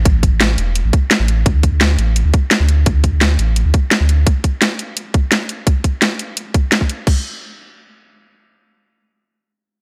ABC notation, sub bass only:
X:1
M:4/4
L:1/16
Q:1/4=171
K:Ddor
V:1 name="Sub bass" clef=bass
A,,,3 A,,,3 E,,,3 A,,, z3 A,,,3 | D,,3 D,,3 A,,,3 D,, z3 D,,3 | D,,3 D,,3 A,,,3 D,, z3 D,,3 | z16 |
z16 | z16 | z16 |]